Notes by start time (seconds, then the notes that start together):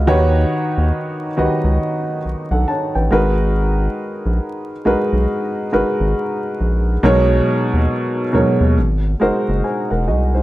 Already playing: D#5
0.07 D#2 D#3 D#4 F#4 G4 B4 C#5
0.78 D#2
1.37 C#2 D#3 D#4 F#4 G4 B4 D#5
1.64 C#2
2.25 B1
2.51 B1 A4 F#5
2.68 C#5 A5
2.95 A1 B4 G5
3.10 G#1 G#3 D#4 F#4 A#4 B4
4.26 A#1
4.85 B1 G#3 D#4 F#4 A#4 B4
5.13 B1
5.72 G#1 G#3 D#4 F#4 A#4 B4
6.00 G#1
6.60 A#1
7.03 B1 B2 F#3 G#3 D#4 A#4 C#5
7.74 D#2
8.33 D#2 B2 F#3 G#3 D#4 A#4 C#5
8.61 D#2
8.77 G#1
9.20 F#1 G#3 D#4 F#4 A#4 C5
9.49 F#1
9.64 C5 G#5
9.91 E1 A#4 F#5
10.07 C2 F#4 D#5
10.34 D#4 C5